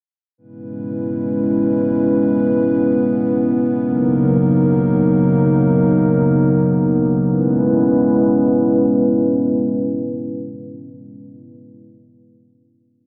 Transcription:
0.38 G#3 B3 C#4 E4 B4
3.83 C#3 F#3 A#3 D#4 A#4
7.28 G#3 B3 C#4 E4 B4

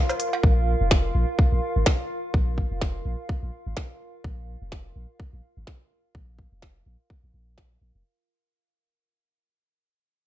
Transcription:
Already playing: F4 A#4 F5
0.09 open hi-hat, low woodblock, shaker
0.20 open hi-hat
0.33 cowbell
0.43 A#1, kick
0.81 F1
0.91 kick, snare
1.15 A#1
1.39 kick
1.52 A#1
1.76 G#1
1.86 kick, snare
2.34 A#1, kick
2.58 kick
2.71 F1
2.81 kick, snare
3.05 A#1
3.29 kick
3.43 A#1
3.67 G#1
3.77 kick, snare
4.24 A#1, kick
4.62 F1
4.72 kick, snare
4.96 A#1
5.20 kick
5.33 A#1
5.57 G#1
5.67 kick, snare
6.15 A#1, kick
6.39 kick
6.52 F1
6.62 kick, snare
6.86 A#1
7.10 kick
7.24 A#1
7.34 A#1
7.58 kick, snare
7.81 A#1
7.95 F1

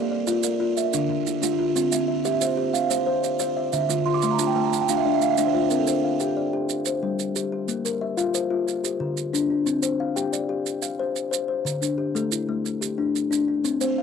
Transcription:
Already playing: A#3 A#4 D5
0.11 D5
0.27 F4 D5, maracas
0.43 A#4 D5, maracas
0.60 F4
0.77 E5, maracas
0.93 D3 D4, maracas
1.09 D3
1.26 E4, maracas
1.42 D4 F4, maracas
1.59 F4
1.76 C4 F4, maracas
1.92 C4 E5, maracas
2.08 E5
2.25 G4 E5, maracas
2.41 C5 E5, maracas
2.57 G4
2.73 F5, maracas
2.90 C5, maracas
3.06 C5
3.23 D5, maracas
3.39 C5, maracas
3.57 E5
3.73 D3 E5, maracas
3.89 D3 F4, maracas
4.06 F4 C6
4.14 D6
4.22 A3 C6, maracas
4.31 A#5
4.39 D4 F4 A5, maracas
4.47 G5
4.56 A3 A5
4.64 A#5
4.73 A5, maracas
4.81 G5
4.89 D4 F5, maracas
4.97 E5
5.05 D4 D5
5.14 E5
5.22 F5, maracas
5.31 E5
5.37 D4 D5, maracas
5.47 C5
5.54 F4 D5
5.62 C5
5.70 C4 A#4, maracas
5.80 A4
5.87 C5, maracas
6.04 F5
6.20 G4 G5, maracas
6.37 D5
6.53 G4
6.69 maracas
6.85 C5, maracas
7.03 G3
7.19 maracas
7.36 G4, maracas
7.52 G4
7.68 A#3, maracas
7.85 A#4, maracas
8.01 E5
8.17 F4 F5, maracas
8.34 C5, maracas
8.50 F4
8.68 maracas
8.84 G4, maracas
9.00 D3
9.17 maracas
9.33 D4, maracas
9.50 D4
9.66 C4, maracas
9.82 C5, maracas
10.00 F5
10.16 G4 G5, maracas
10.33 D5, maracas
10.49 G4
10.66 maracas
10.82 F5, maracas
11.00 C5
11.16 maracas
11.31 C5, maracas
11.48 C5
11.65 D3, maracas
11.82 D4, maracas
11.98 G4
12.15 A3 A4, maracas
12.32 E4, maracas
12.49 A3
12.66 maracas
12.81 G4, maracas
12.98 D4
13.16 maracas
13.31 D4, maracas
13.48 D4
13.64 C4, maracas
13.81 C4 C5, maracas
13.98 F5

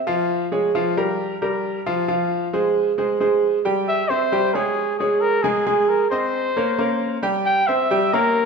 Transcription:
0.07 F3 F4 F5
0.52 G#3 G#4 C#5
0.75 F3 F4 F5
0.97 G3 G4 A#4
1.42 G3 G4 A#4
1.86 F3 F4 F5
2.08 F3 F4 F5
2.53 G#3 G#4 C5
2.98 G#3 G#4 C5
3.20 G#3 G#4 C5
3.65 G3 G4 G5
3.88 E5
4.10 C4 C5 E5
4.32 G3 G4 G5
4.55 G#3 G#4 C#5
4.99 G#3 G#4 C#5
5.21 A#4
5.43 G#3 G#4 G#5
5.66 G#3 G#4 G#5
5.89 A#4
6.11 C4 C5 D#5
6.57 A#3 A#4 C#5
6.79 A#3 C#4 A#4
7.23 G3 G4 G5
7.46 G5
7.67 C4 C5 E5
7.91 G3 G4 G5
8.13 A#3 A#4 C#5

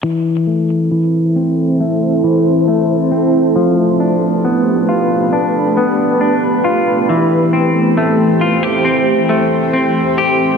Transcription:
0.03 E3 A3 C4 E4 A4 C5
0.47 A3
0.91 E3
1.36 C4
1.80 A3
2.24 E3
2.68 A3
3.12 C4
3.56 F3 B3 D4 G4 B4
4.00 D4
4.45 B3
4.89 F4
5.33 D4
5.77 B3
6.21 D4
6.64 F4
7.08 E3 A3 C4 C5
7.53 C4
7.97 A3
8.41 F4
8.63 G4
8.85 C4
9.29 A3
9.73 C4
10.18 G4

